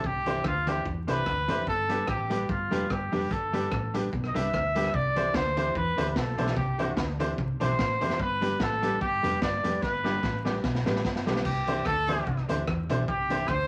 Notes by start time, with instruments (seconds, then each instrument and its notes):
0.04 fingered electric bass C2, clean electric guitar C3, trumpet G4, kick
0.26 clean electric guitar E3 C4 D4 G4, upright piano D4 E4 C5, closed hi-hat
0.44 fingered electric bass D2, clean electric guitar D3, trumpet F4, kick, cross-stick
0.66 clean electric guitar E3 C4 D4 G4, upright piano D4 E4 C5, trumpet G4, closed hi-hat
0.85 fingered electric bass E2, clean electric guitar E3, kick
1.07 fingered electric bass C2, clean electric guitar C3 E3 C4 D4 G4, upright piano D4 E4 C5, trumpet B4, closed hi-hat
1.26 fingered electric bass D2, clean electric guitar D3, kick, cross-stick
1.48 fingered electric bass F1, clean electric guitar F2 E3 C4 D4 G4, upright piano D4 E4 C5, closed hi-hat
1.66 fingered electric bass G1, clean electric guitar G2, trumpet A4, kick
1.89 clean electric guitar G3 B3 D4 G4, upright piano D4 G4 B4, closed hi-hat
2.07 fingered electric bass A1, clean electric guitar A2, trumpet G4, kick, cross-stick
2.30 clean electric guitar G3 B3 D4 G4, upright piano D4 G4 B4, closed hi-hat
2.48 fingered electric bass G1, clean electric guitar G2, trumpet F4, muted clean electric guitar stroke, kick
2.71 fingered electric bass F1, clean electric guitar F2 G3 B3 D4 G4, upright piano D4 G4 B4, closed hi-hat
2.89 fingered electric bass G1, clean electric guitar G2, trumpet G4, kick, cross-stick
3.12 fingered electric bass F1, clean electric guitar F2 G3 B3 D4 G4, upright piano D4 G4 B4, open hi-hat
3.31 fingered electric bass G1, clean electric guitar G2, trumpet A4, kick, hi-hat pedal
3.53 clean electric guitar G3 B3 D4 G4, upright piano D4 G4 B4, closed hi-hat
3.71 fingered electric bass A1, clean electric guitar A2, kick, cross-stick
3.94 clean electric guitar G3 B3 D4 G4, upright piano D4 G4 B4, closed hi-hat
4.12 fingered electric bass B1, clean electric guitar B2, kick
4.24 trumpet D#5, cross-stick
4.34 fingered electric bass C2, clean electric guitar C3 G3 B3 D4 G4, upright piano D4 G4 B4, trumpet E5, closed hi-hat
4.53 fingered electric bass D2, clean electric guitar D3, kick, cross-stick
4.75 clean electric guitar G3 B3 D4 G4, upright piano D4 G4 B4, closed hi-hat
4.84 cross-stick
4.94 fingered electric bass C2, clean electric guitar C3, trumpet D5, kick
5.16 clean electric guitar E3 C4 D4 G4, upright piano D4 E4 C5, closed hi-hat
5.34 fingered electric bass D2, clean electric guitar D3, trumpet C5, kick, snare
5.56 clean electric guitar E3 C4 D4 G4, upright piano D4 E4 C5, closed hi-hat
5.75 fingered electric bass E2, clean electric guitar E3, trumpet B4, muted clean electric guitar stroke, kick
5.97 fingered electric bass D2, clean electric guitar D3 E3 C4 D4 G4, upright piano D4 E4 C5, closed hi-hat
6.10 trumpet B4
6.16 fingered electric bass B1, clean electric guitar B2, trumpet A4, kick, snare
6.37 fingered electric bass B1, clean electric guitar B2 E3 C4 D4 G4, upright piano D4 E4 C5, closed hi-hat
6.47 snare
6.56 fingered electric bass C2, clean electric guitar C3, trumpet G4, kick
6.78 clean electric guitar E3 C4 D4 G4, upright piano D4 E4 C5, closed hi-hat
6.97 fingered electric bass D2, clean electric guitar D3, kick, snare
7.19 clean electric guitar E3 C4 D4 G4, upright piano D4 E4 C5, closed hi-hat
7.37 fingered electric bass C2, clean electric guitar C3, kick
7.60 fingered electric bass B1, clean electric guitar B2 E3 C4 D4 G4, upright piano D4 E4 C5, trumpet C5, closed hi-hat
7.78 fingered electric bass A1, clean electric guitar A2, kick, snare
8.00 fingered electric bass F1, clean electric guitar F2 E3 C4 D4 G4, upright piano D4 E4 C5, closed hi-hat
8.10 snare
8.19 fingered electric bass G1, clean electric guitar G2, trumpet B4, kick
8.41 clean electric guitar G3 B3 D4 G4, upright piano D4 G4 B4, closed hi-hat
8.60 fingered electric bass A1, clean electric guitar A2, trumpet A4, kick, snare
8.82 clean electric guitar G3 B3 D4 G4, upright piano D4 G4 B4, closed hi-hat
9.00 fingered electric bass G1, clean electric guitar G2, trumpet G4, muted clean electric guitar stroke, kick
9.22 fingered electric bass F1, clean electric guitar F2 G3 B3 D4 G4, upright piano D4 G4 B4, closed hi-hat
9.42 fingered electric bass G1, clean electric guitar G2, trumpet D5, kick, snare
9.63 fingered electric bass F1, clean electric guitar F2 G3 B3 D4 G4, upright piano D4 G4 B4, closed hi-hat
9.82 fingered electric bass G1, clean electric guitar G2, trumpet B4, kick, snare
10.04 clean electric guitar G3 B3 D4 G4, upright piano D4 G4 B4, snare
10.23 fingered electric bass A1, clean electric guitar A2, kick, snare
10.45 clean electric guitar G3 B3 D4 G4, upright piano D4 G4 B4, snare
10.64 fingered electric bass B1, clean electric guitar B2, kick, snare
10.75 snare
10.86 fingered electric bass A1, clean electric guitar A2 G3 B3 D4 G4, upright piano D4 G4 B4, snare
10.95 snare
11.04 fingered electric bass G1, clean electric guitar G2, kick, snare
11.16 snare
11.26 fingered electric bass B1, clean electric guitar B2 G3 B3 D4 G4, upright piano D4 G4 B4, snare
11.36 snare
11.45 fingered electric bass C2, clean electric guitar C3, trumpet G4, kick, crash
11.67 clean electric guitar E3 C4 D4 G4, upright piano D4 E4 C5, closed hi-hat
11.85 fingered electric bass D2, clean electric guitar D3, trumpet A4, kick, cross-stick
12.08 clean electric guitar E3 C4 D4 G4, upright piano D4 E4 C5, closed hi-hat
12.27 fingered electric bass C2, clean electric guitar C3, muted clean electric guitar stroke, kick
12.37 cross-stick
12.48 fingered electric bass D2, clean electric guitar D3 E3 C4 D4 G4, upright piano D4 E4 C5, closed hi-hat
12.67 fingered electric bass E2, clean electric guitar E3, kick, cross-stick
12.89 fingered electric bass B1, clean electric guitar B2 E3 C4 D4 G4, upright piano D4 E4 C5, closed hi-hat
13.08 fingered electric bass C2, clean electric guitar C3, trumpet G4, kick
13.30 clean electric guitar E3 C4 D4 G4, upright piano D4 E4 C5, closed hi-hat
13.48 fingered electric bass D2, clean electric guitar D3, trumpet C5, kick, cross-stick